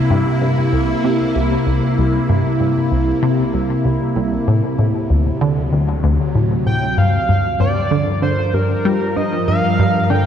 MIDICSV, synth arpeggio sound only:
0, 0, Header, 1, 2, 480
1, 0, Start_track
1, 0, Tempo, 625000
1, 1518, Time_signature, 4, 2, 24, 8
1, 7880, End_track
2, 0, Start_track
2, 0, Title_t, "Synth arpeggio sound"
2, 0, Program_c, 0, 84
2, 79, Note_on_c, 0, 43, 99
2, 187, Note_off_c, 0, 43, 0
2, 319, Note_on_c, 0, 43, 73
2, 427, Note_off_c, 0, 43, 0
2, 558, Note_on_c, 0, 36, 76
2, 720, Note_off_c, 0, 36, 0
2, 801, Note_on_c, 0, 48, 97
2, 962, Note_off_c, 0, 48, 0
2, 1039, Note_on_c, 0, 36, 79
2, 1201, Note_off_c, 0, 36, 0
2, 1280, Note_on_c, 0, 36, 75
2, 1387, Note_off_c, 0, 36, 0
2, 1521, Note_on_c, 0, 36, 94
2, 1682, Note_off_c, 0, 36, 0
2, 1760, Note_on_c, 0, 43, 93
2, 1867, Note_off_c, 0, 43, 0
2, 1998, Note_on_c, 0, 43, 73
2, 2106, Note_off_c, 0, 43, 0
2, 2238, Note_on_c, 0, 36, 70
2, 2400, Note_off_c, 0, 36, 0
2, 2478, Note_on_c, 0, 48, 99
2, 2640, Note_off_c, 0, 48, 0
2, 2718, Note_on_c, 0, 36, 71
2, 2880, Note_off_c, 0, 36, 0
2, 2958, Note_on_c, 0, 36, 81
2, 3066, Note_off_c, 0, 36, 0
2, 3197, Note_on_c, 0, 36, 97
2, 3360, Note_off_c, 0, 36, 0
2, 3438, Note_on_c, 0, 45, 88
2, 3546, Note_off_c, 0, 45, 0
2, 3677, Note_on_c, 0, 45, 72
2, 3785, Note_off_c, 0, 45, 0
2, 3918, Note_on_c, 0, 38, 75
2, 4080, Note_off_c, 0, 38, 0
2, 4157, Note_on_c, 0, 50, 98
2, 4320, Note_off_c, 0, 50, 0
2, 4398, Note_on_c, 0, 38, 82
2, 4560, Note_off_c, 0, 38, 0
2, 4636, Note_on_c, 0, 38, 97
2, 4745, Note_off_c, 0, 38, 0
2, 4877, Note_on_c, 0, 45, 75
2, 5040, Note_off_c, 0, 45, 0
2, 5117, Note_on_c, 0, 45, 69
2, 5280, Note_off_c, 0, 45, 0
2, 5357, Note_on_c, 0, 43, 75
2, 5520, Note_off_c, 0, 43, 0
2, 5598, Note_on_c, 0, 43, 72
2, 5706, Note_off_c, 0, 43, 0
2, 5836, Note_on_c, 0, 43, 100
2, 5999, Note_off_c, 0, 43, 0
2, 6076, Note_on_c, 0, 50, 98
2, 6185, Note_off_c, 0, 50, 0
2, 6315, Note_on_c, 0, 50, 78
2, 6425, Note_off_c, 0, 50, 0
2, 6557, Note_on_c, 0, 43, 79
2, 6720, Note_off_c, 0, 43, 0
2, 6797, Note_on_c, 0, 55, 109
2, 6960, Note_off_c, 0, 55, 0
2, 7037, Note_on_c, 0, 43, 73
2, 7200, Note_off_c, 0, 43, 0
2, 7279, Note_on_c, 0, 43, 78
2, 7387, Note_off_c, 0, 43, 0
2, 7519, Note_on_c, 0, 43, 102
2, 7681, Note_off_c, 0, 43, 0
2, 7758, Note_on_c, 0, 50, 100
2, 7866, Note_off_c, 0, 50, 0
2, 7880, End_track
0, 0, End_of_file